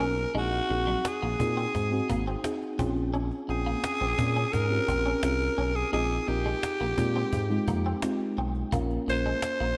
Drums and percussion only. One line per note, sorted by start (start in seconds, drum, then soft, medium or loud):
0.18 cajon slap soft
0.35 cajon slap soft
0.52 cajon slap soft
0.70 cajon slap soft
0.88 cajon slap soft
1.05 cajon slap loud
1.22 cajon slap soft
1.40 cajon bass medium
1.57 cajon slap soft
1.75 cajon bass medium
1.75 cajon slap soft
1.92 cajon slap soft
2.10 cajon bass medium
2.27 cajon slap soft
2.44 cajon slap medium
2.62 cajon slap soft
2.79 cajon bass loud
2.96 cajon slap soft
3.14 cajon slap soft
3.31 cajon slap soft
3.49 cajon slap soft
3.66 cajon slap soft
3.84 cajon slap loud
4.01 cajon slap soft
4.19 cajon bass medium
4.36 cajon slap soft
4.53 cajon bass medium
4.53 cajon slap soft
4.71 cajon slap soft
4.88 cajon bass medium
5.05 cajon slap soft
5.23 cajon slap medium
5.40 cajon slap soft
5.58 cajon slap soft
5.76 cajon slap soft
5.93 cajon slap soft
6.10 cajon slap soft
6.28 cajon slap soft
6.46 cajon slap soft
6.63 cajon slap loud
6.80 cajon slap soft
6.98 cajon bass medium
7.15 cajon slap soft
7.33 cajon bass medium
7.33 cajon slap soft
7.50 cajon slap soft
7.68 cajon bass medium
7.85 cajon slap soft
8.02 cajon slap loud
8.20 cajon slap soft
8.37 cajon slap soft
8.55 cajon slap soft
8.72 cajon bass medium
8.90 cajon slap soft
9.08 cajon slap soft
9.25 cajon slap soft
9.42 cajon slap loud
9.60 cajon slap soft